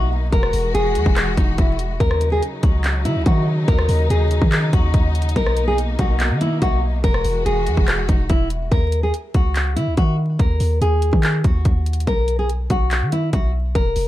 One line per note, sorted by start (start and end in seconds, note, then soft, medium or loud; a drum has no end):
0.00 0.31 B1 loud
0.00 0.31 B2 medium
0.00 0.31 A#3 medium
0.00 0.29 D#4 medium
0.33 0.53 E1 loud
0.33 1.99 E3 medium
0.33 1.99 G#3 medium
0.33 1.99 F#4 loud
0.33 0.72 A#4 loud
0.33 kick loud
0.33 closed hi-hat medium
0.43 cross-stick loud
0.53 0.74 E1 loud
0.53 open hi-hat medium
0.74 0.97 E1 loud
0.74 1.34 G#4 medium
0.74 closed hi-hat medium
0.95 1.05 E2 loud
0.95 closed hi-hat medium
1.06 1.36 E1 loud
1.06 kick loud
1.16 cross-stick medium
1.16 clap loud
1.16 closed hi-hat medium
1.37 1.58 E1 loud
1.37 1.56 D#4 medium
1.37 kick loud
1.37 closed hi-hat medium
1.58 1.99 E1 loud
1.58 1.76 E4 medium
1.58 kick loud
1.58 closed hi-hat medium
1.79 closed hi-hat medium
2.00 2.41 D#2 loud
2.00 5.33 C#3 medium
2.00 5.33 F#3 medium
2.00 7.00 D#4 loud
2.00 2.30 A#4 loud
2.00 kick loud
2.00 closed hi-hat medium
2.11 cross-stick loud
2.21 closed hi-hat medium
2.32 2.41 G#4 medium
2.43 closed hi-hat medium
2.63 3.07 C#2 loud
2.63 3.03 F#4 medium
2.63 kick loud
2.63 closed hi-hat medium
2.84 clap loud
2.84 closed hi-hat medium
3.05 3.17 D#3 loud
3.05 3.23 E4 medium
3.05 closed hi-hat medium
3.16 3.26 C#2 loud
3.26 3.66 D#3 loud
3.26 3.44 F#4 medium
3.26 kick loud
3.26 closed hi-hat medium
3.68 3.88 D#2 loud
3.68 4.07 A#4 loud
3.68 kick loud
3.68 closed hi-hat medium
3.79 cross-stick loud
3.89 4.09 D#2 loud
3.89 open hi-hat medium
4.10 4.40 D#2 loud
4.10 4.69 G#4 medium
4.10 closed hi-hat medium
4.31 closed hi-hat medium
4.42 4.72 D#3 loud
4.42 kick loud
4.52 clap loud
4.52 closed hi-hat medium
4.73 4.93 D#2 loud
4.73 5.32 F#4 medium
4.73 kick loud
4.73 closed hi-hat medium
4.94 5.34 D#2 loud
4.94 kick loud
4.94 closed hi-hat medium
5.15 closed hi-hat medium
5.22 closed hi-hat medium
5.29 closed hi-hat medium
5.36 5.96 B1 loud
5.36 7.02 B2 medium
5.36 7.02 A#3 medium
5.36 5.66 A#4 loud
5.36 kick loud
5.36 closed hi-hat medium
5.46 cross-stick loud
5.57 closed hi-hat medium
5.68 5.76 G#4 medium
5.78 closed hi-hat medium
5.99 6.32 B1 loud
5.99 6.39 F#4 medium
5.99 kick loud
5.99 closed hi-hat medium
6.20 clap loud
6.20 closed hi-hat medium
6.31 6.60 D#3 loud
6.41 6.59 E4 medium
6.41 closed hi-hat medium
6.62 7.02 B1 loud
6.62 6.79 F#4 medium
6.62 kick medium
6.62 closed hi-hat medium
7.04 7.24 E1 loud
7.04 8.70 E3 medium
7.04 8.70 G#3 medium
7.04 8.70 F#4 medium
7.04 7.43 A#4 loud
7.04 kick loud
7.04 closed hi-hat medium
7.14 cross-stick loud
7.24 7.45 E1 loud
7.24 open hi-hat medium
7.46 7.68 E1 loud
7.46 8.05 G#4 medium
7.46 closed hi-hat medium
7.67 7.77 E2 loud
7.67 closed hi-hat medium
7.77 8.07 E1 loud
7.77 kick loud
7.88 cross-stick medium
7.88 clap loud
7.88 closed hi-hat medium
8.09 8.29 E1 loud
8.09 8.27 D#4 medium
8.09 kick loud
8.09 closed hi-hat medium
8.29 8.70 E1 loud
8.29 8.48 E4 medium
8.29 kick loud
8.29 closed hi-hat medium
8.50 closed hi-hat medium
8.71 9.12 D#2 loud
8.71 9.01 A#4 loud
8.71 kick loud
8.71 closed hi-hat medium
8.92 closed hi-hat medium
9.03 9.12 G#4 medium
9.14 closed hi-hat medium
9.34 9.78 C#2 loud
9.34 9.74 F#4 medium
9.34 kick loud
9.34 closed hi-hat medium
9.56 clap loud
9.56 closed hi-hat medium
9.76 9.89 D#3 loud
9.76 9.94 E4 medium
9.76 closed hi-hat medium
9.87 9.97 C#2 loud
9.97 10.38 D#3 loud
9.97 10.15 F#4 medium
9.97 kick loud
9.97 closed hi-hat medium
10.39 10.60 D#2 loud
10.39 10.79 A#4 loud
10.39 kick loud
10.39 closed hi-hat medium
10.60 10.81 D#2 loud
10.60 open hi-hat medium
10.81 11.12 D#2 loud
10.81 11.41 G#4 medium
10.81 closed hi-hat medium
11.02 closed hi-hat medium
11.13 11.43 D#3 loud
11.13 kick medium
11.23 clap loud
11.23 closed hi-hat medium
11.44 11.65 D#2 loud
11.44 12.04 F#4 medium
11.44 kick loud
11.44 closed hi-hat medium
11.65 12.06 D#2 loud
11.65 kick loud
11.65 closed hi-hat medium
11.86 closed hi-hat medium
11.93 closed hi-hat medium
12.00 closed hi-hat medium
12.07 12.68 B1 loud
12.07 12.37 A#4 loud
12.07 kick loud
12.07 closed hi-hat medium
12.28 closed hi-hat medium
12.39 12.48 G#4 medium
12.49 closed hi-hat medium
12.70 13.03 B1 loud
12.70 13.10 F#4 medium
12.70 kick loud
12.70 closed hi-hat medium
12.91 clap loud
12.91 closed hi-hat medium
13.02 13.32 D#3 loud
13.12 13.30 E4 medium
13.12 closed hi-hat medium
13.33 13.73 B1 loud
13.33 13.51 F#4 medium
13.33 kick loud
13.33 closed hi-hat medium
13.75 13.95 E1 loud
13.75 14.08 A#4 loud
13.75 kick loud
13.75 closed hi-hat medium
13.96 14.08 E1 loud
13.96 open hi-hat medium